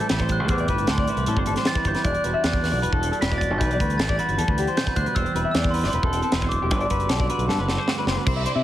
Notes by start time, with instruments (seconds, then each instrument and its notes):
Already playing: clean electric guitar A2 E3 G3 C4, glockenspiel G6
0.00 clean electric guitar A4, closed hi-hat
0.09 fingered electric bass A1, clean electric guitar E2 E4 B4, snare, closed hi-hat
0.19 clean electric guitar C5, kick, snare, closed hi-hat
0.29 clean electric guitar G3, glockenspiel F#6, kick, closed hi-hat
0.40 fingered electric bass C2, clean electric guitar A4
0.48 fingered electric bass E2, clean electric guitar A2 C4 C5, glockenspiel D6, kick, closed hi-hat
0.58 clean electric guitar D5, closed hi-hat
0.68 fingered electric bass G1, clean electric guitar E4 B4, kick, closed hi-hat
0.78 closed hi-hat
0.87 fingered electric bass D2, clean electric guitar C4 A4, glockenspiel C6, snare, closed hi-hat
0.98 clean electric guitar D5, kick
1.07 clean electric guitar E3 E4 B4, closed hi-hat
1.16 fingered electric bass C2, closed hi-hat
1.26 fingered electric bass A2, clean electric guitar G3 A4, closed hi-hat
1.37 fingered electric bass G1, clean electric guitar C5, kick
1.46 clean electric guitar C4 A4, closed hi-hat
1.56 clean electric guitar C5, snare, closed hi-hat
1.65 clean electric guitar E2 E4, glockenspiel A6, snare, closed hi-hat
1.75 clean electric guitar B4, kick, closed hi-hat
1.85 fingered electric bass G1, clean electric guitar G3 C5, glockenspiel G6, kick, closed hi-hat
1.95 clean electric guitar B4, snare, closed hi-hat
2.04 fingered electric bass E1, clean electric guitar E2 D4 D5, glockenspiel F#6, kick, closed hi-hat
2.14 closed hi-hat
2.24 fingered electric bass E1, clean electric guitar F#4 B4, closed hi-hat
2.34 clean electric guitar E5
2.43 fingered electric bass E2, clean electric guitar D4 D5, glockenspiel F#6, snare, closed hi-hat
2.53 kick
2.62 clean electric guitar E3 F#4 B4, glockenspiel F#6, snare, open hi-hat
2.72 fingered electric bass B1, clean electric guitar D5
2.82 fingered electric bass E1, clean electric guitar G3 B4, closed hi-hat
2.92 fingered electric bass E1, clean electric guitar A4, kick
3.03 clean electric guitar D4, closed hi-hat
3.12 clean electric guitar A4, closed hi-hat
3.21 fingered electric bass E1, clean electric guitar B2 F#4 B4, glockenspiel B6, snare, closed hi-hat
3.32 clean electric guitar D5, kick, closed hi-hat
3.38 glockenspiel A6, kick, closed hi-hat
3.42 clean electric guitar G3
3.50 fingered electric bass G1, clean electric guitar A4
3.58 fingered electric bass B1, clean electric guitar E2 D4 B4, glockenspiel G6, kick, closed hi-hat
3.71 clean electric guitar D5, closed hi-hat
3.80 fingered electric bass D2, clean electric guitar F#4 B4, kick, closed hi-hat
3.90 closed hi-hat
3.98 fingered electric bass A1, clean electric guitar B3 A4, glockenspiel A6, snare, closed hi-hat
4.09 clean electric guitar D4 D5, kick
4.18 clean electric guitar E3 F#4 B4, glockenspiel A6, closed hi-hat
4.28 fingered electric bass G1, closed hi-hat
4.38 fingered electric bass E2, clean electric guitar G3 A4, closed hi-hat
4.48 fingered electric bass D2, clean electric guitar B4, kick
4.58 clean electric guitar D4 G4, closed hi-hat
4.67 clean electric guitar C5, closed hi-hat
4.77 clean electric guitar B2 F#4, glockenspiel G6, snare, closed hi-hat
4.87 clean electric guitar B4, kick, closed hi-hat
4.96 fingered electric bass D2, clean electric guitar G3 C5, glockenspiel F#6, kick, closed hi-hat
5.06 clean electric guitar B4, closed hi-hat
5.15 fingered electric bass E1, clean electric guitar E2 C4 C5, glockenspiel E6, kick, closed hi-hat
5.26 closed hi-hat
5.35 fingered electric bass E1, clean electric guitar E4 B4, closed hi-hat
5.45 clean electric guitar E5
5.51 fingered electric bass E2, clean electric guitar D5, glockenspiel E6, snare, closed hi-hat
5.56 clean electric guitar C4
5.64 kick
5.71 clean electric guitar B4, glockenspiel C6, open hi-hat
5.75 clean electric guitar E3 D4
5.84 fingered electric bass G1, clean electric guitar E4 D5, snare
5.90 fingered electric bass E1, clean electric guitar B4, glockenspiel C6, closed hi-hat
5.95 clean electric guitar B3
6.03 fingered electric bass E1, clean electric guitar A4, kick
6.13 clean electric guitar C4, closed hi-hat
6.22 clean electric guitar A4, closed hi-hat
6.32 fingered electric bass E1, clean electric guitar E2 B4, snare, closed hi-hat
6.42 clean electric guitar C5, kick, closed hi-hat
6.49 clean electric guitar F#2, glockenspiel D6, kick, closed hi-hat
6.62 fingered electric bass E1, clean electric guitar G4
6.71 fingered electric bass G1, clean electric guitar G2 D4 B4, kick, closed hi-hat
6.81 clean electric guitar D5, closed hi-hat
6.90 fingered electric bass F#1, clean electric guitar F#4 B4, kick, closed hi-hat
7.00 closed hi-hat
7.09 fingered electric bass B1, clean electric guitar D4 A4, snare, closed hi-hat
7.20 clean electric guitar D5, kick
7.30 clean electric guitar D3 F#4 B4, closed hi-hat
7.38 fingered electric bass B1, closed hi-hat
7.48 fingered electric bass G2, clean electric guitar B3 A4, snare
7.58 fingered electric bass F#1, clean electric guitar B4
7.68 clean electric guitar B3 A4, snare
7.77 clean electric guitar D4 C5
7.88 clean electric guitar D2 F#4, snare
7.99 clean electric guitar B4
8.07 fingered electric bass F#1, clean electric guitar B3 C5, snare
8.17 clean electric guitar B4
8.25 fingered electric bass C2, clean electric guitar C3 E4 C5, kick, crash
8.36 clean electric guitar E5
8.46 clean electric guitar D4 C5, closed hi-hat
8.55 fingered electric bass C3, clean electric guitar E5